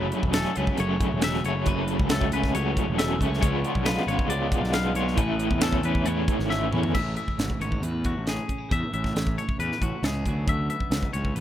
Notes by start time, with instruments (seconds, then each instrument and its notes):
Already playing: picked electric bass F#1, overdriven electric guitar F#2 C#3 F#3 A3 C#4, clean electric guitar F#2 F#3 A3 E4 A4 B4
0.11 overdriven electric guitar F#3 A3 C#4, clean electric guitar E4, closed hi-hat
0.23 picked electric bass E1, kick
0.33 overdriven electric guitar C#3 F#3 A3 C#4, clean electric guitar F#3 A3 A4, snare, closed hi-hat
0.45 snare
0.56 picked electric bass C#2, overdriven electric guitar F#3 A3 C#4, clean electric guitar A4 B4, closed hi-hat
0.67 kick
0.77 picked electric bass F#1, overdriven electric guitar F#2 C#3 F#3 A3 C#4, clean electric guitar C#4 C#5, closed hi-hat
0.90 clean electric guitar E4
1.00 clean electric guitar C#3, kick, closed hi-hat
1.12 picked electric bass E1
1.22 overdriven electric guitar C#3 F#3 A3 C#4, clean electric guitar A3 E5, snare, closed hi-hat
1.34 snare
1.43 picked electric bass F#1, overdriven electric guitar F#3 A3 C#4, clean electric guitar E4 C#5, closed hi-hat
1.66 picked electric bass F#1, overdriven electric guitar F#2 C#3 F#3 A3, clean electric guitar F#2 F#4 B4, kick, closed hi-hat
1.71 overdriven electric guitar C#4
1.78 clean electric guitar A4
1.88 overdriven electric guitar A3 C#4, clean electric guitar C#4, closed hi-hat
1.92 overdriven electric guitar F#3
1.99 picked electric bass C#2, clean electric guitar E4, kick
2.09 overdriven electric guitar C#3 F#3 A3, clean electric guitar F#3 A3 A4, snare, closed hi-hat
2.14 overdriven electric guitar C#4
2.21 kick
2.32 picked electric bass C#2, overdriven electric guitar A3 C#4, clean electric guitar A4 B4, closed hi-hat
2.36 overdriven electric guitar F#3
2.44 kick, snare
2.54 picked electric bass C#2, overdriven electric guitar F#2 C#3 F#3 A3 C#4, clean electric guitar E4 C#5, closed hi-hat
2.77 clean electric guitar C#3, kick, closed hi-hat
2.88 picked electric bass E1
2.98 overdriven electric guitar C#3 F#3 A3 C#4, clean electric guitar A3 E5, snare, closed hi-hat
3.20 picked electric bass C#2, overdriven electric guitar A3 C#4, clean electric guitar C#4 C#5, kick, closed hi-hat
3.24 overdriven electric guitar F#3
3.30 clean electric guitar E4, snare
3.40 picked electric bass C#2, clean electric guitar C#3 F3 B3 D4 G#4 C#5, overdriven electric guitar C#3 G#3, kick, closed hi-hat
3.46 overdriven electric guitar B3 F4
3.63 overdriven electric guitar B3 F4, clean electric guitar D4, closed hi-hat
3.67 overdriven electric guitar G#3
3.75 picked electric bass B1, kick
3.85 overdriven electric guitar C#3 G#3 B3 F4, clean electric guitar F3 A3 B4, snare, closed hi-hat
3.95 clean electric guitar B3, snare
4.05 picked electric bass G#1, overdriven electric guitar B3 F4, clean electric guitar B4 C#5, closed hi-hat
4.09 overdriven electric guitar G#3
4.19 kick
4.28 picked electric bass C#2, overdriven electric guitar C#3 G#3 B3 F4, clean electric guitar D4 D5, closed hi-hat
4.51 clean electric guitar G#2, kick, closed hi-hat
4.61 picked electric bass B1, snare
4.72 overdriven electric guitar C#3 G#3 B3 F4, clean electric guitar B3 F5, snare, closed hi-hat
4.95 picked electric bass B1, overdriven electric guitar G#3 B3 F4, clean electric guitar D4 C#5, closed hi-hat
5.08 snare
5.16 picked electric bass A1, overdriven electric guitar A2 E3 A3 C#4 E4, clean electric guitar A2 G#4 B4, kick, closed hi-hat
5.39 overdriven electric guitar A3 C#4 E4, clean electric guitar C#4, closed hi-hat
5.50 picked electric bass E2, clean electric guitar E4, kick
5.60 overdriven electric guitar E3 A3 C#4 E4, clean electric guitar E3 C#4 A4, snare, closed hi-hat
5.72 kick
5.83 picked electric bass E2, overdriven electric guitar A3 C#4 E4, clean electric guitar B4, closed hi-hat
5.95 kick
6.06 picked electric bass E2, overdriven electric guitar A2 E3 A3 C#4 E4, clean electric guitar E4 C#5, closed hi-hat
6.28 kick, closed hi-hat
6.39 picked electric bass G#1, snare
6.49 overdriven electric guitar E3 A3 C#4 E4, clean electric guitar C#4 E5, snare
6.71 picked electric bass E2, overdriven electric guitar A3 C#4 E4, clean electric guitar E4 C#5, mid tom
6.83 floor tom
6.94 picked electric bass A1, clean electric guitar A2 G#4 E5, kick, crash
7.15 clean electric guitar E3 E5, closed hi-hat
7.28 kick
7.37 picked electric bass G#1, clean electric guitar C#4, snare, closed hi-hat
7.50 kick
7.59 picked electric bass G#1, clean electric guitar C#4 C#5, closed hi-hat
7.71 clean electric guitar E4, kick
7.81 picked electric bass E2, clean electric guitar A2 B4, closed hi-hat
8.04 clean electric guitar E4 F#4, kick, closed hi-hat
8.17 picked electric bass A1
8.27 clean electric guitar C#4 G#4, snare, closed hi-hat
8.48 clean electric guitar C#4, kick, closed hi-hat
8.58 clean electric guitar E4
8.69 picked electric bass E2, clean electric guitar A2 G#4 E5, kick, closed hi-hat
8.92 picked electric bass A1, clean electric guitar E3 E5, closed hi-hat
9.04 kick, snare
9.15 picked electric bass A1, clean electric guitar C#4, snare, closed hi-hat
9.27 kick
9.37 clean electric guitar E4 C#5, closed hi-hat
9.49 kick
9.59 picked electric bass E2, clean electric guitar A2 B4, closed hi-hat
9.72 snare
9.81 picked electric bass A1, clean electric guitar E4 F#4, kick, closed hi-hat
10.03 picked electric bass C#2, clean electric guitar C#4 G#4, snare, closed hi-hat
10.26 picked electric bass D2, clean electric guitar D3 F#3 B3 C#4 F#4, kick, closed hi-hat
10.47 picked electric bass D2, clean electric guitar F#3 E5, kick, closed hi-hat
10.70 clean electric guitar B3 E5, closed hi-hat
10.80 kick
10.91 picked electric bass C#2, clean electric guitar C#4, snare, closed hi-hat
11.03 kick
11.13 picked electric bass C#2, clean electric guitar A2 C#5, closed hi-hat
11.25 kick
11.35 picked electric bass A1, clean electric guitar B4, closed hi-hat